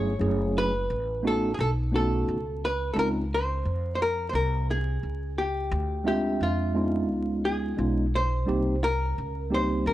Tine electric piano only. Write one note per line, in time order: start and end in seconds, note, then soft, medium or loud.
0.00 0.12 F#3 medium
0.00 0.12 A3 medium
0.00 0.12 C#4 medium
0.00 0.13 E4 medium
0.00 0.13 G#4 medium
0.19 0.71 F#3 medium
0.19 0.71 A3 medium
0.19 0.72 C#4 medium
0.19 0.72 E4 medium
0.19 0.72 G#4 medium
1.22 1.50 A3 medium
1.22 1.50 B3 medium
1.22 1.50 C#4 medium
1.22 1.51 D#4 medium
1.22 1.51 F#4 medium
1.92 2.35 A3 medium
1.92 2.36 B3 medium
1.92 2.36 C#4 medium
1.92 2.36 D#4 medium
1.92 2.36 F#4 medium
2.94 3.22 G#3 medium
2.94 3.22 C4 medium
2.94 3.23 C#4 medium
2.94 3.23 D#4 medium
2.94 3.23 F4 medium
6.04 6.73 G#3 medium
6.04 7.04 C4 medium
6.04 7.04 D4 medium
6.04 6.75 F4 medium
6.04 7.05 E5 medium
6.74 7.73 G#3 medium
6.74 7.73 B3 medium
6.74 7.73 C#4 medium
6.74 7.74 D#4 medium
6.74 7.74 F4 medium
7.77 8.04 G#3 medium
7.77 8.05 B3 medium
7.77 8.05 C#4 medium
7.77 8.05 D#4 medium
7.77 8.06 F4 medium
8.46 8.73 G3 medium
8.46 8.74 A#3 medium
8.46 8.74 C4 medium
8.46 8.74 D#4 medium
8.46 8.75 G4 medium
9.50 9.94 G3 medium
9.50 9.94 A#3 medium
9.50 9.94 C4 medium
9.50 9.94 D#4 medium
9.50 9.94 G4 medium